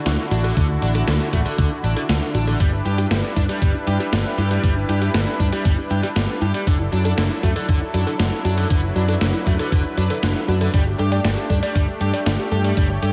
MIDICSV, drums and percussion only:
0, 0, Header, 1, 2, 480
1, 0, Start_track
1, 0, Key_signature, 2, "major"
1, 0, Tempo, 508475
1, 536, Time_signature, 4, 2, 24, 8
1, 12393, End_track
2, 0, Start_track
2, 0, Title_t, "Drums"
2, 56, Note_on_c, 9, 38, 114
2, 56, Note_on_c, 9, 42, 94
2, 150, Note_off_c, 9, 38, 0
2, 150, Note_off_c, 9, 42, 0
2, 296, Note_on_c, 9, 42, 67
2, 391, Note_off_c, 9, 42, 0
2, 416, Note_on_c, 9, 42, 66
2, 511, Note_off_c, 9, 42, 0
2, 536, Note_on_c, 9, 36, 117
2, 536, Note_on_c, 9, 42, 91
2, 631, Note_off_c, 9, 36, 0
2, 631, Note_off_c, 9, 42, 0
2, 776, Note_on_c, 9, 42, 64
2, 871, Note_off_c, 9, 42, 0
2, 896, Note_on_c, 9, 42, 66
2, 991, Note_off_c, 9, 42, 0
2, 1016, Note_on_c, 9, 38, 119
2, 1016, Note_on_c, 9, 42, 96
2, 1110, Note_off_c, 9, 38, 0
2, 1110, Note_off_c, 9, 42, 0
2, 1256, Note_on_c, 9, 36, 63
2, 1256, Note_on_c, 9, 42, 71
2, 1350, Note_off_c, 9, 36, 0
2, 1350, Note_off_c, 9, 42, 0
2, 1376, Note_on_c, 9, 42, 67
2, 1470, Note_off_c, 9, 42, 0
2, 1496, Note_on_c, 9, 36, 116
2, 1496, Note_on_c, 9, 42, 91
2, 1590, Note_off_c, 9, 36, 0
2, 1590, Note_off_c, 9, 42, 0
2, 1736, Note_on_c, 9, 42, 70
2, 1830, Note_off_c, 9, 42, 0
2, 1856, Note_on_c, 9, 42, 67
2, 1950, Note_off_c, 9, 42, 0
2, 1976, Note_on_c, 9, 38, 122
2, 1976, Note_on_c, 9, 42, 94
2, 2070, Note_off_c, 9, 38, 0
2, 2070, Note_off_c, 9, 42, 0
2, 2215, Note_on_c, 9, 42, 68
2, 2310, Note_off_c, 9, 42, 0
2, 2336, Note_on_c, 9, 42, 67
2, 2430, Note_off_c, 9, 42, 0
2, 2456, Note_on_c, 9, 36, 118
2, 2456, Note_on_c, 9, 42, 92
2, 2550, Note_off_c, 9, 36, 0
2, 2550, Note_off_c, 9, 42, 0
2, 2696, Note_on_c, 9, 42, 65
2, 2790, Note_off_c, 9, 42, 0
2, 2815, Note_on_c, 9, 42, 67
2, 2910, Note_off_c, 9, 42, 0
2, 2936, Note_on_c, 9, 38, 120
2, 2936, Note_on_c, 9, 42, 88
2, 3030, Note_off_c, 9, 38, 0
2, 3030, Note_off_c, 9, 42, 0
2, 3176, Note_on_c, 9, 36, 62
2, 3176, Note_on_c, 9, 42, 66
2, 3270, Note_off_c, 9, 36, 0
2, 3270, Note_off_c, 9, 42, 0
2, 3296, Note_on_c, 9, 42, 66
2, 3390, Note_off_c, 9, 42, 0
2, 3416, Note_on_c, 9, 36, 118
2, 3416, Note_on_c, 9, 42, 88
2, 3510, Note_off_c, 9, 36, 0
2, 3510, Note_off_c, 9, 42, 0
2, 3656, Note_on_c, 9, 42, 65
2, 3751, Note_off_c, 9, 42, 0
2, 3776, Note_on_c, 9, 42, 66
2, 3871, Note_off_c, 9, 42, 0
2, 3896, Note_on_c, 9, 38, 121
2, 3896, Note_on_c, 9, 42, 92
2, 3991, Note_off_c, 9, 38, 0
2, 3991, Note_off_c, 9, 42, 0
2, 4136, Note_on_c, 9, 42, 67
2, 4231, Note_off_c, 9, 42, 0
2, 4256, Note_on_c, 9, 42, 64
2, 4350, Note_off_c, 9, 42, 0
2, 4376, Note_on_c, 9, 36, 118
2, 4377, Note_on_c, 9, 42, 91
2, 4470, Note_off_c, 9, 36, 0
2, 4471, Note_off_c, 9, 42, 0
2, 4617, Note_on_c, 9, 42, 63
2, 4711, Note_off_c, 9, 42, 0
2, 4736, Note_on_c, 9, 42, 64
2, 4830, Note_off_c, 9, 42, 0
2, 4856, Note_on_c, 9, 38, 121
2, 4856, Note_on_c, 9, 42, 91
2, 4950, Note_off_c, 9, 38, 0
2, 4950, Note_off_c, 9, 42, 0
2, 5096, Note_on_c, 9, 36, 61
2, 5096, Note_on_c, 9, 42, 67
2, 5190, Note_off_c, 9, 36, 0
2, 5190, Note_off_c, 9, 42, 0
2, 5216, Note_on_c, 9, 42, 67
2, 5310, Note_off_c, 9, 42, 0
2, 5335, Note_on_c, 9, 42, 87
2, 5336, Note_on_c, 9, 36, 121
2, 5430, Note_off_c, 9, 36, 0
2, 5430, Note_off_c, 9, 42, 0
2, 5576, Note_on_c, 9, 42, 63
2, 5670, Note_off_c, 9, 42, 0
2, 5696, Note_on_c, 9, 42, 63
2, 5790, Note_off_c, 9, 42, 0
2, 5816, Note_on_c, 9, 38, 118
2, 5816, Note_on_c, 9, 42, 90
2, 5910, Note_off_c, 9, 38, 0
2, 5910, Note_off_c, 9, 42, 0
2, 6056, Note_on_c, 9, 42, 62
2, 6150, Note_off_c, 9, 42, 0
2, 6176, Note_on_c, 9, 42, 62
2, 6271, Note_off_c, 9, 42, 0
2, 6296, Note_on_c, 9, 36, 116
2, 6297, Note_on_c, 9, 42, 86
2, 6391, Note_off_c, 9, 36, 0
2, 6391, Note_off_c, 9, 42, 0
2, 6536, Note_on_c, 9, 42, 59
2, 6631, Note_off_c, 9, 42, 0
2, 6656, Note_on_c, 9, 42, 60
2, 6751, Note_off_c, 9, 42, 0
2, 6776, Note_on_c, 9, 38, 114
2, 6776, Note_on_c, 9, 42, 88
2, 6870, Note_off_c, 9, 38, 0
2, 6870, Note_off_c, 9, 42, 0
2, 7016, Note_on_c, 9, 36, 60
2, 7016, Note_on_c, 9, 42, 62
2, 7111, Note_off_c, 9, 36, 0
2, 7111, Note_off_c, 9, 42, 0
2, 7136, Note_on_c, 9, 42, 63
2, 7231, Note_off_c, 9, 42, 0
2, 7256, Note_on_c, 9, 36, 113
2, 7256, Note_on_c, 9, 42, 82
2, 7350, Note_off_c, 9, 42, 0
2, 7351, Note_off_c, 9, 36, 0
2, 7496, Note_on_c, 9, 42, 63
2, 7590, Note_off_c, 9, 42, 0
2, 7616, Note_on_c, 9, 42, 60
2, 7711, Note_off_c, 9, 42, 0
2, 7736, Note_on_c, 9, 38, 118
2, 7736, Note_on_c, 9, 42, 87
2, 7830, Note_off_c, 9, 38, 0
2, 7830, Note_off_c, 9, 42, 0
2, 7976, Note_on_c, 9, 42, 61
2, 8070, Note_off_c, 9, 42, 0
2, 8096, Note_on_c, 9, 42, 60
2, 8191, Note_off_c, 9, 42, 0
2, 8216, Note_on_c, 9, 42, 87
2, 8217, Note_on_c, 9, 36, 113
2, 8311, Note_off_c, 9, 36, 0
2, 8311, Note_off_c, 9, 42, 0
2, 8456, Note_on_c, 9, 42, 60
2, 8551, Note_off_c, 9, 42, 0
2, 8576, Note_on_c, 9, 42, 61
2, 8670, Note_off_c, 9, 42, 0
2, 8696, Note_on_c, 9, 38, 113
2, 8696, Note_on_c, 9, 42, 84
2, 8791, Note_off_c, 9, 38, 0
2, 8791, Note_off_c, 9, 42, 0
2, 8937, Note_on_c, 9, 36, 58
2, 8937, Note_on_c, 9, 42, 63
2, 9031, Note_off_c, 9, 36, 0
2, 9031, Note_off_c, 9, 42, 0
2, 9056, Note_on_c, 9, 42, 64
2, 9151, Note_off_c, 9, 42, 0
2, 9176, Note_on_c, 9, 42, 81
2, 9177, Note_on_c, 9, 36, 106
2, 9271, Note_off_c, 9, 36, 0
2, 9271, Note_off_c, 9, 42, 0
2, 9416, Note_on_c, 9, 42, 62
2, 9511, Note_off_c, 9, 42, 0
2, 9536, Note_on_c, 9, 42, 62
2, 9631, Note_off_c, 9, 42, 0
2, 9656, Note_on_c, 9, 38, 114
2, 9656, Note_on_c, 9, 42, 88
2, 9751, Note_off_c, 9, 38, 0
2, 9751, Note_off_c, 9, 42, 0
2, 9896, Note_on_c, 9, 42, 62
2, 9991, Note_off_c, 9, 42, 0
2, 10016, Note_on_c, 9, 42, 62
2, 10111, Note_off_c, 9, 42, 0
2, 10136, Note_on_c, 9, 42, 91
2, 10137, Note_on_c, 9, 36, 110
2, 10230, Note_off_c, 9, 42, 0
2, 10231, Note_off_c, 9, 36, 0
2, 10376, Note_on_c, 9, 42, 61
2, 10470, Note_off_c, 9, 42, 0
2, 10496, Note_on_c, 9, 42, 63
2, 10590, Note_off_c, 9, 42, 0
2, 10616, Note_on_c, 9, 38, 109
2, 10616, Note_on_c, 9, 42, 87
2, 10711, Note_off_c, 9, 38, 0
2, 10711, Note_off_c, 9, 42, 0
2, 10856, Note_on_c, 9, 42, 63
2, 10857, Note_on_c, 9, 36, 56
2, 10951, Note_off_c, 9, 36, 0
2, 10951, Note_off_c, 9, 42, 0
2, 10977, Note_on_c, 9, 42, 67
2, 11071, Note_off_c, 9, 42, 0
2, 11097, Note_on_c, 9, 36, 111
2, 11097, Note_on_c, 9, 42, 84
2, 11191, Note_off_c, 9, 36, 0
2, 11191, Note_off_c, 9, 42, 0
2, 11336, Note_on_c, 9, 42, 66
2, 11431, Note_off_c, 9, 42, 0
2, 11456, Note_on_c, 9, 42, 63
2, 11551, Note_off_c, 9, 42, 0
2, 11576, Note_on_c, 9, 38, 114
2, 11576, Note_on_c, 9, 42, 87
2, 11671, Note_off_c, 9, 38, 0
2, 11671, Note_off_c, 9, 42, 0
2, 11816, Note_on_c, 9, 42, 65
2, 11911, Note_off_c, 9, 42, 0
2, 11936, Note_on_c, 9, 42, 62
2, 12031, Note_off_c, 9, 42, 0
2, 12056, Note_on_c, 9, 36, 113
2, 12056, Note_on_c, 9, 42, 92
2, 12150, Note_off_c, 9, 42, 0
2, 12151, Note_off_c, 9, 36, 0
2, 12296, Note_on_c, 9, 42, 64
2, 12391, Note_off_c, 9, 42, 0
2, 12393, End_track
0, 0, End_of_file